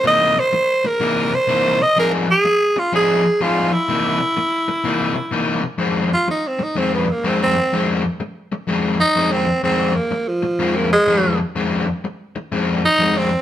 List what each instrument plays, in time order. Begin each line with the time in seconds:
0.04 overdriven electric guitar C3 E3 A#3 D#4, tenor saxophone D#5
0.36 tenor saxophone C5, muted overdriven electric guitar stroke
0.53 muted overdriven electric guitar stroke
0.84 tenor saxophone A#4, muted overdriven electric guitar stroke
1.00 overdriven electric guitar C3 E3 A#3 D#4
1.33 tenor saxophone C5, muted overdriven electric guitar stroke
1.48 overdriven electric guitar C3 E3 A#3 D#4
1.80 tenor saxophone D#5, muted overdriven electric guitar stroke
1.97 overdriven electric guitar F3 C4 D#4 G#4, tenor saxophone A#4
2.28 tenor saxophone G#4, muted overdriven electric guitar stroke
2.45 muted overdriven electric guitar stroke
2.76 tenor saxophone F4, muted overdriven electric guitar stroke
2.93 overdriven electric guitar F3 C4 D#4 G#4, tenor saxophone G#4
3.24 muted overdriven electric guitar stroke
3.41 overdriven electric guitar F3 C4 D#4 G#4, tenor saxophone F4
3.72 tenor saxophone E4, muted overdriven electric guitar stroke
3.89 overdriven electric guitar C3 E3 A#3 D#4
4.20 muted overdriven electric guitar stroke
4.37 muted overdriven electric guitar stroke
4.68 muted overdriven electric guitar stroke
4.84 overdriven electric guitar C3 E3 A#3 D#4
5.16 muted overdriven electric guitar stroke
5.31 overdriven electric guitar C3 E3 A#3 D#4
5.63 muted overdriven electric guitar stroke
5.78 overdriven electric guitar F2 D#3 G#3 C4
6.12 tenor saxophone F4, muted overdriven electric guitar stroke
6.28 tenor saxophone D#4, muted overdriven electric guitar stroke
6.48 tenor saxophone C4
6.59 muted overdriven electric guitar stroke
6.63 tenor saxophone D#4
6.75 overdriven electric guitar F2 D#3 G#3 C4, tenor saxophone C4
6.94 tenor saxophone B3
7.07 tenor saxophone A#3, muted overdriven electric guitar stroke
7.24 overdriven electric guitar F2 D#3 G#3 C4, tenor saxophone C4
7.43 tenor saxophone C4
7.56 muted overdriven electric guitar stroke
7.73 overdriven electric guitar F2 D#3 G#3 C4
8.04 muted overdriven electric guitar stroke
8.20 muted overdriven electric guitar stroke
8.52 muted overdriven electric guitar stroke
8.67 overdriven electric guitar F2 D#3 G#3 C4
8.99 tenor saxophone D#4, muted overdriven electric guitar stroke
9.16 overdriven electric guitar F2 D#3 G#3 C4
9.32 tenor saxophone C4
9.47 muted overdriven electric guitar stroke
9.63 overdriven electric guitar F2 D#3 G#3 C4, tenor saxophone C4
9.95 tenor saxophone A#3, muted overdriven electric guitar stroke
10.11 muted overdriven electric guitar stroke
10.28 tenor saxophone F3
10.43 muted overdriven electric guitar stroke
10.59 overdriven electric guitar F2 D#3 G#3 C4
10.76 tenor saxophone A#3
10.91 tenor saxophone G#3, muted overdriven electric guitar stroke
11.07 overdriven electric guitar F2 D#3 G#3 C4
11.39 muted overdriven electric guitar stroke
11.56 overdriven electric guitar F2 D#3 G#3 C4
11.87 muted overdriven electric guitar stroke
12.04 muted overdriven electric guitar stroke
12.36 muted overdriven electric guitar stroke
12.52 overdriven electric guitar F2 D#3 G#3 C4
12.84 tenor saxophone D#4, muted overdriven electric guitar stroke
12.99 overdriven electric guitar F2 D#3 G#3 C4
13.18 tenor saxophone C4
13.31 muted overdriven electric guitar stroke